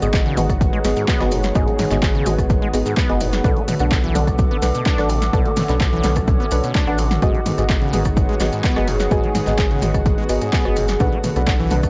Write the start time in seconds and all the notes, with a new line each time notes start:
Already playing: D#3 G#3 B3 F#4 G#4
0.02 G#1 G#2 B3 F#4 G#4 D#5, cross-stick, closed hi-hat, maracas
0.14 kick, snare, clap, closed hi-hat, maracas
0.20 C#5
0.26 C#3, snare, closed hi-hat
0.37 G#1 G#2 B3 F#4 G#4 D#5, closed hi-hat, open hi-hat, mid tom, maracas
0.49 kick, cross-stick, closed hi-hat, maracas
0.56 F#5
0.61 kick, closed hi-hat, maracas
0.73 G#3, closed hi-hat
0.84 G#1 B3 F#4 G#4 D#5, cross-stick, snare, closed hi-hat, open hi-hat, maracas
0.96 G#2, snare, closed hi-hat, maracas
1.08 B3, kick, snare, clap, closed hi-hat, maracas
1.20 F#1 B3 F#4 G#4 D#5, cross-stick, snare, closed hi-hat
1.31 G#2, closed hi-hat, open hi-hat, maracas
1.43 snare, closed hi-hat, maracas
1.55 G#1 G#2 B3 F#4 G#4 D#5, kick, cross-stick, closed hi-hat, maracas
1.68 G#3, closed hi-hat
1.79 G#2, snare, open hi-hat, mid tom, maracas
1.91 G#1 G#2 B3 F#4 G#4 D#5, cross-stick, clap, closed hi-hat, maracas
2.02 kick, snare, clap, closed hi-hat, maracas
2.15 C#3, closed hi-hat
2.26 G#1 G#2 B3 F#4 G#4 D#5, closed hi-hat, open hi-hat, mid tom, maracas
2.38 kick, cross-stick, closed hi-hat, maracas
2.50 kick, closed hi-hat, maracas
2.62 G#3, closed hi-hat
2.73 G#1 B3 F#4 G#4 D#5, cross-stick, closed hi-hat, open hi-hat, maracas
2.86 G#2, snare, closed hi-hat, maracas
2.97 B3, kick, snare, clap, closed hi-hat, maracas
3.09 F#1 B3 F#4 G#4 D#5, cross-stick, closed hi-hat
3.21 G#2, closed hi-hat, open hi-hat, maracas
3.32 snare, closed hi-hat, maracas
3.44 B1 B2 D3 A3 D4 F#4 A4 B4 F#5, kick, cross-stick, closed hi-hat, maracas
3.57 B3, closed hi-hat
3.68 B2, closed hi-hat, open hi-hat, mid tom, maracas
3.79 B1 B2 D4 A4 B4 F#5, cross-stick, closed hi-hat, maracas
3.83 D6
3.91 kick, snare, clap, closed hi-hat, maracas
4.04 E3, snare, closed hi-hat
4.15 B1 B2 D4 A4 B4 F#5, closed hi-hat, open hi-hat, mid tom, maracas
4.27 kick, cross-stick, closed hi-hat, maracas
4.38 kick, closed hi-hat, maracas
4.51 B3, closed hi-hat
4.62 B1 D4 A4 B4 F#5, cross-stick, snare, closed hi-hat, open hi-hat, maracas
4.75 B2, closed hi-hat, maracas
4.86 D4, kick, clap, closed hi-hat, maracas
4.98 A1 D4 A4 B4 F#5, cross-stick, snare, closed hi-hat
5.09 B2, open hi-hat, maracas
5.22 snare, closed hi-hat, maracas
5.33 B1 B2 C#4 D4 A4 B4 F#5, kick, cross-stick, closed hi-hat, maracas
5.45 B3, closed hi-hat
5.56 B2, snare, open hi-hat, mid tom, maracas
5.69 B1 B2 D4 A4 B4 F#5, cross-stick, clap, closed hi-hat, maracas
5.80 kick, snare, clap, closed hi-hat, maracas
5.93 E3, closed hi-hat
6.03 B1 B2 D4 A4 B4 F#5, snare, closed hi-hat, open hi-hat, mid tom, maracas
6.16 kick, cross-stick, closed hi-hat, maracas
6.27 kick, closed hi-hat, maracas
6.40 B3, closed hi-hat
6.51 B1 D4 A4 B4 F#5, cross-stick, closed hi-hat, open hi-hat, maracas
6.64 B2, snare, closed hi-hat, maracas
6.75 D4, kick, snare, clap, closed hi-hat, maracas
6.87 A1 D4 A4 B4 F#5, cross-stick, closed hi-hat
6.98 B2, closed hi-hat, open hi-hat, maracas
7.11 snare, closed hi-hat, mid tom, maracas
7.22 G#1 G#2 D#3 G#3 B3 F#4 G#4 D#5, kick, cross-stick, closed hi-hat, maracas
7.34 G#3, closed hi-hat
7.46 G#2, closed hi-hat, open hi-hat, mid tom, maracas
7.58 G#1 G#2 B3 F#4 G#4 D#5, cross-stick, closed hi-hat, maracas
7.69 C#5, kick, snare, clap, closed hi-hat, maracas
7.82 C#3, snare, closed hi-hat
7.93 G#1 G#2 B3 F#4 G#4 D#5, closed hi-hat, open hi-hat, mid tom, maracas
8.05 kick, cross-stick, closed hi-hat, maracas
8.17 kick, closed hi-hat, maracas
8.29 G#3, closed hi-hat
8.40 G#1 B3 F#4 G#4 D#5, cross-stick, snare, closed hi-hat, open hi-hat, maracas
8.53 G#2, snare, closed hi-hat, maracas
8.64 B3, kick, snare, clap, closed hi-hat, maracas
8.76 F#1 B3 F#4 G#4 D#5, cross-stick, snare, closed hi-hat
8.88 G#2, closed hi-hat, open hi-hat, maracas
9.00 snare, closed hi-hat, maracas
9.11 G#1 G#2 B3 F#4 G#4 D#5, kick, cross-stick, closed hi-hat, maracas
9.23 G#3, closed hi-hat
9.35 G#2, snare, open hi-hat, mid tom, maracas
9.47 G#1 G#2 B3 F#4 G#4 D#5, cross-stick, clap, closed hi-hat, maracas
9.58 kick, snare, clap, closed hi-hat, maracas
9.71 C#3, closed hi-hat
9.82 G#1 G#2 B3 F#4 G#4 D#5, closed hi-hat, open hi-hat, mid tom, maracas
9.94 kick, cross-stick, closed hi-hat, maracas
10.06 kick, closed hi-hat, maracas
10.18 G#3, closed hi-hat
10.29 G#1 B3 F#4 G#4 D#5, cross-stick, closed hi-hat, open hi-hat, maracas
10.41 G#2 G#4, snare, closed hi-hat, maracas
10.53 B3, kick, snare, clap, closed hi-hat, maracas
10.65 F#1 B3 F#4 G#4 D#5, cross-stick, closed hi-hat
10.76 G#2, closed hi-hat, open hi-hat, maracas
10.88 snare, closed hi-hat, maracas
11.00 B1 B2 D3 A3 B3 D4 A4 B4 F#5, kick, cross-stick, closed hi-hat, maracas
11.12 B3, closed hi-hat
11.24 B2, closed hi-hat, open hi-hat, mid tom, maracas
11.36 B1 B2 D4 A4 B4 F#5, cross-stick, closed hi-hat, maracas
11.47 kick, snare, clap, closed hi-hat, maracas
11.60 E3 D5, snare, closed hi-hat
11.71 B1 B2 D4 A4 B4 F#5, closed hi-hat, open hi-hat, mid tom, maracas
11.83 kick, cross-stick, closed hi-hat, maracas